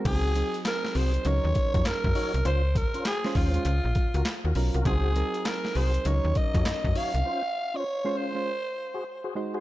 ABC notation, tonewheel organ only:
X:1
M:4/4
L:1/16
Q:"Swing 16ths" 1/4=100
K:Abmix
V:1 name="Tonewheel organ"
[CGA]2 z4 [CGA] z4 [EGd] z2 [EGd] z | [DFc] z2 [DFc] z2 [DFc] z4 [FGB] z [FGB] z [FGB] | [GAc]2 z4 [GAc] z4 [EGd] z2 [EGd] z | [DFc] z2 [DFc] z2 [DFc] z4 [GAc] z [GAc] z [GAc] |]